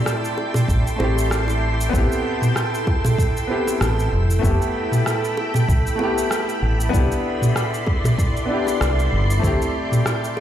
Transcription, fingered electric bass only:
0, 0, Header, 1, 2, 480
1, 0, Start_track
1, 0, Tempo, 625000
1, 1485, Time_signature, 4, 2, 24, 8
1, 7988, End_track
2, 0, Start_track
2, 0, Title_t, "Fingered electric bass"
2, 0, Program_c, 0, 33
2, 526, Note_on_c, 0, 33, 76
2, 634, Note_off_c, 0, 33, 0
2, 765, Note_on_c, 0, 33, 80
2, 1454, Note_off_c, 0, 33, 0
2, 1485, Note_on_c, 0, 33, 98
2, 1594, Note_off_c, 0, 33, 0
2, 2925, Note_on_c, 0, 33, 77
2, 3126, Note_off_c, 0, 33, 0
2, 3165, Note_on_c, 0, 29, 82
2, 3366, Note_off_c, 0, 29, 0
2, 3406, Note_on_c, 0, 29, 99
2, 3514, Note_off_c, 0, 29, 0
2, 4366, Note_on_c, 0, 36, 83
2, 4474, Note_off_c, 0, 36, 0
2, 5087, Note_on_c, 0, 33, 96
2, 5287, Note_off_c, 0, 33, 0
2, 5327, Note_on_c, 0, 36, 97
2, 5435, Note_off_c, 0, 36, 0
2, 6766, Note_on_c, 0, 36, 73
2, 6966, Note_off_c, 0, 36, 0
2, 7006, Note_on_c, 0, 31, 82
2, 7207, Note_off_c, 0, 31, 0
2, 7245, Note_on_c, 0, 38, 105
2, 7354, Note_off_c, 0, 38, 0
2, 7988, End_track
0, 0, End_of_file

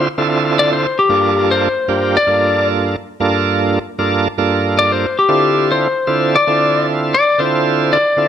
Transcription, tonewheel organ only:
0, 0, Header, 1, 2, 480
1, 0, Start_track
1, 0, Key_signature, -1, "minor"
1, 0, Tempo, 524017
1, 1009, Time_signature, 4, 2, 24, 8
1, 7585, End_track
2, 0, Start_track
2, 0, Title_t, "Tonewheel organ"
2, 0, Program_c, 0, 16
2, 163, Note_on_c, 0, 60, 69
2, 164, Note_on_c, 0, 50, 81
2, 165, Note_on_c, 0, 64, 75
2, 167, Note_on_c, 0, 65, 70
2, 168, Note_on_c, 0, 69, 86
2, 793, Note_off_c, 0, 50, 0
2, 793, Note_off_c, 0, 60, 0
2, 794, Note_off_c, 0, 64, 0
2, 795, Note_off_c, 0, 65, 0
2, 795, Note_off_c, 0, 69, 0
2, 999, Note_on_c, 0, 43, 67
2, 1003, Note_on_c, 0, 58, 64
2, 1004, Note_on_c, 0, 65, 60
2, 1005, Note_on_c, 0, 62, 62
2, 1009, Note_on_c, 0, 69, 74
2, 1542, Note_off_c, 0, 43, 0
2, 1544, Note_off_c, 0, 58, 0
2, 1544, Note_off_c, 0, 65, 0
2, 1545, Note_off_c, 0, 62, 0
2, 1547, Note_off_c, 0, 69, 0
2, 1723, Note_on_c, 0, 43, 66
2, 1727, Note_on_c, 0, 65, 63
2, 1728, Note_on_c, 0, 58, 61
2, 1729, Note_on_c, 0, 62, 65
2, 1734, Note_on_c, 0, 67, 71
2, 1995, Note_off_c, 0, 43, 0
2, 1997, Note_off_c, 0, 65, 0
2, 1998, Note_off_c, 0, 58, 0
2, 1998, Note_off_c, 0, 62, 0
2, 2001, Note_off_c, 0, 67, 0
2, 2077, Note_on_c, 0, 43, 68
2, 2078, Note_on_c, 0, 58, 66
2, 2081, Note_on_c, 0, 62, 64
2, 2081, Note_on_c, 0, 65, 62
2, 2085, Note_on_c, 0, 69, 72
2, 2710, Note_off_c, 0, 43, 0
2, 2710, Note_off_c, 0, 58, 0
2, 2712, Note_off_c, 0, 62, 0
2, 2712, Note_off_c, 0, 65, 0
2, 2714, Note_off_c, 0, 69, 0
2, 2930, Note_on_c, 0, 43, 77
2, 2935, Note_on_c, 0, 58, 71
2, 2936, Note_on_c, 0, 65, 76
2, 2939, Note_on_c, 0, 62, 73
2, 2942, Note_on_c, 0, 69, 93
2, 3468, Note_off_c, 0, 43, 0
2, 3470, Note_off_c, 0, 58, 0
2, 3470, Note_off_c, 0, 65, 0
2, 3472, Note_off_c, 0, 62, 0
2, 3474, Note_off_c, 0, 69, 0
2, 3650, Note_on_c, 0, 43, 82
2, 3653, Note_on_c, 0, 62, 73
2, 3654, Note_on_c, 0, 58, 74
2, 3654, Note_on_c, 0, 65, 76
2, 3660, Note_on_c, 0, 69, 93
2, 3918, Note_off_c, 0, 43, 0
2, 3920, Note_off_c, 0, 58, 0
2, 3920, Note_off_c, 0, 62, 0
2, 3920, Note_off_c, 0, 65, 0
2, 3923, Note_off_c, 0, 69, 0
2, 4009, Note_on_c, 0, 43, 80
2, 4012, Note_on_c, 0, 58, 74
2, 4015, Note_on_c, 0, 62, 76
2, 4017, Note_on_c, 0, 65, 77
2, 4018, Note_on_c, 0, 69, 88
2, 4635, Note_off_c, 0, 43, 0
2, 4637, Note_off_c, 0, 58, 0
2, 4639, Note_off_c, 0, 62, 0
2, 4640, Note_off_c, 0, 65, 0
2, 4640, Note_off_c, 0, 69, 0
2, 4842, Note_on_c, 0, 50, 69
2, 4842, Note_on_c, 0, 60, 65
2, 4843, Note_on_c, 0, 64, 66
2, 4845, Note_on_c, 0, 65, 66
2, 4852, Note_on_c, 0, 69, 78
2, 5383, Note_off_c, 0, 60, 0
2, 5384, Note_off_c, 0, 50, 0
2, 5384, Note_off_c, 0, 64, 0
2, 5385, Note_off_c, 0, 65, 0
2, 5388, Note_off_c, 0, 69, 0
2, 5561, Note_on_c, 0, 60, 64
2, 5561, Note_on_c, 0, 64, 61
2, 5563, Note_on_c, 0, 50, 70
2, 5564, Note_on_c, 0, 65, 64
2, 5564, Note_on_c, 0, 69, 81
2, 5834, Note_off_c, 0, 60, 0
2, 5834, Note_off_c, 0, 64, 0
2, 5835, Note_off_c, 0, 50, 0
2, 5835, Note_off_c, 0, 65, 0
2, 5835, Note_off_c, 0, 69, 0
2, 5926, Note_on_c, 0, 50, 68
2, 5928, Note_on_c, 0, 60, 68
2, 5930, Note_on_c, 0, 64, 62
2, 5933, Note_on_c, 0, 65, 65
2, 5936, Note_on_c, 0, 69, 77
2, 6555, Note_off_c, 0, 50, 0
2, 6556, Note_off_c, 0, 60, 0
2, 6557, Note_off_c, 0, 64, 0
2, 6558, Note_off_c, 0, 65, 0
2, 6559, Note_off_c, 0, 69, 0
2, 6762, Note_on_c, 0, 50, 70
2, 6762, Note_on_c, 0, 60, 65
2, 6769, Note_on_c, 0, 64, 66
2, 6770, Note_on_c, 0, 65, 66
2, 6773, Note_on_c, 0, 69, 75
2, 7304, Note_off_c, 0, 50, 0
2, 7304, Note_off_c, 0, 60, 0
2, 7308, Note_off_c, 0, 64, 0
2, 7308, Note_off_c, 0, 65, 0
2, 7309, Note_off_c, 0, 69, 0
2, 7481, Note_on_c, 0, 50, 69
2, 7483, Note_on_c, 0, 60, 63
2, 7489, Note_on_c, 0, 64, 62
2, 7491, Note_on_c, 0, 65, 62
2, 7491, Note_on_c, 0, 69, 76
2, 7585, Note_off_c, 0, 50, 0
2, 7585, Note_off_c, 0, 60, 0
2, 7585, Note_off_c, 0, 64, 0
2, 7585, Note_off_c, 0, 65, 0
2, 7585, Note_off_c, 0, 69, 0
2, 7585, End_track
0, 0, End_of_file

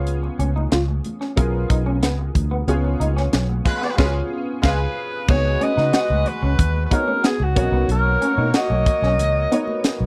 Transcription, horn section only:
0, 0, Header, 1, 2, 480
1, 0, Start_track
1, 0, Tempo, 651466
1, 53, Time_signature, 4, 2, 24, 8
1, 7413, End_track
2, 0, Start_track
2, 0, Title_t, "Horn section"
2, 0, Program_c, 0, 61
2, 2693, Note_on_c, 0, 65, 95
2, 2693, Note_on_c, 0, 71, 102
2, 2694, Note_on_c, 0, 56, 88
2, 2898, Note_off_c, 0, 71, 0
2, 2899, Note_off_c, 0, 56, 0
2, 2899, Note_off_c, 0, 65, 0
2, 2931, Note_on_c, 0, 71, 100
2, 2932, Note_on_c, 0, 65, 95
2, 2934, Note_on_c, 0, 56, 94
2, 3055, Note_off_c, 0, 71, 0
2, 3056, Note_off_c, 0, 65, 0
2, 3057, Note_off_c, 0, 56, 0
2, 3406, Note_on_c, 0, 56, 92
2, 3406, Note_on_c, 0, 65, 96
2, 3408, Note_on_c, 0, 71, 93
2, 3531, Note_off_c, 0, 65, 0
2, 3532, Note_off_c, 0, 56, 0
2, 3533, Note_off_c, 0, 71, 0
2, 3891, Note_on_c, 0, 66, 90
2, 3891, Note_on_c, 0, 71, 91
2, 3893, Note_on_c, 0, 56, 84
2, 5303, Note_off_c, 0, 66, 0
2, 5303, Note_off_c, 0, 71, 0
2, 5304, Note_off_c, 0, 56, 0
2, 5570, Note_on_c, 0, 66, 80
2, 5571, Note_on_c, 0, 58, 79
2, 5571, Note_on_c, 0, 73, 87
2, 7413, Note_off_c, 0, 58, 0
2, 7413, Note_off_c, 0, 66, 0
2, 7413, Note_off_c, 0, 73, 0
2, 7413, End_track
0, 0, End_of_file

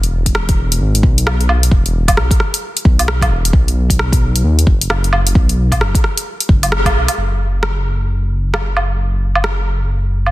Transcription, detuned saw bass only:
0, 0, Header, 1, 2, 480
1, 0, Start_track
1, 0, Tempo, 454545
1, 1815, Time_signature, 4, 2, 24, 8
1, 10893, End_track
2, 0, Start_track
2, 0, Title_t, "Detuned saw bass"
2, 0, Program_c, 0, 39
2, 0, Note_on_c, 0, 28, 93
2, 841, Note_off_c, 0, 28, 0
2, 854, Note_on_c, 0, 32, 100
2, 1080, Note_off_c, 0, 32, 0
2, 1091, Note_on_c, 0, 35, 87
2, 1801, Note_off_c, 0, 35, 0
2, 1813, Note_on_c, 0, 28, 98
2, 2293, Note_on_c, 0, 35, 103
2, 2309, Note_off_c, 0, 28, 0
2, 2428, Note_off_c, 0, 35, 0
2, 3013, Note_on_c, 0, 35, 83
2, 3482, Note_off_c, 0, 35, 0
2, 3491, Note_on_c, 0, 28, 97
2, 3718, Note_off_c, 0, 28, 0
2, 3732, Note_on_c, 0, 35, 93
2, 4682, Note_off_c, 0, 35, 0
2, 4689, Note_on_c, 0, 39, 101
2, 4917, Note_off_c, 0, 39, 0
2, 4931, Note_on_c, 0, 30, 88
2, 5641, Note_off_c, 0, 30, 0
2, 5653, Note_on_c, 0, 35, 92
2, 6133, Note_on_c, 0, 30, 107
2, 6149, Note_off_c, 0, 35, 0
2, 6268, Note_off_c, 0, 30, 0
2, 6855, Note_on_c, 0, 30, 82
2, 7089, Note_off_c, 0, 30, 0
2, 7096, Note_on_c, 0, 30, 101
2, 7332, Note_on_c, 0, 35, 92
2, 7348, Note_off_c, 0, 30, 0
2, 7468, Note_off_c, 0, 35, 0
2, 7575, Note_on_c, 0, 30, 81
2, 10893, Note_off_c, 0, 30, 0
2, 10893, End_track
0, 0, End_of_file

